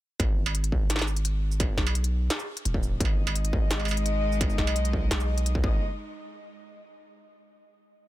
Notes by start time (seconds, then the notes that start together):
0.20 G#1, kick, closed hi-hat, struck metal
0.46 struck metal
0.55 closed hi-hat
0.64 closed hi-hat
0.72 G#1, kick
0.90 snare, closed hi-hat, shaker
0.96 snare, struck metal
1.02 snare
1.07 shaker
1.16 closed hi-hat
1.25 closed hi-hat
1.51 shaker
1.60 kick, closed hi-hat, struck metal
1.77 B1, snare
1.87 struck metal
1.95 closed hi-hat
2.04 closed hi-hat
2.30 snare, closed hi-hat
2.39 shaker
2.57 closed hi-hat
2.65 D#1, closed hi-hat
2.74 kick
2.83 shaker
3.00 G#1 G#3 D#4 D#5, kick, closed hi-hat
3.05 struck metal
3.27 struck metal
3.36 closed hi-hat
3.45 closed hi-hat
3.53 G#1, kick
3.71 snare, closed hi-hat, shaker
3.80 struck metal
3.85 struck metal, shaker
3.91 struck metal
3.97 closed hi-hat
4.06 closed hi-hat
4.32 shaker
4.41 kick, closed hi-hat, struck metal
4.50 shaker
4.58 B1, snare
4.67 struck metal
4.76 closed hi-hat
4.85 closed hi-hat
4.93 kick
5.11 B1, snare, closed hi-hat
5.20 shaker
5.38 closed hi-hat
5.46 closed hi-hat
5.55 kick
5.64 G#1 G#3 D#4 D#5, kick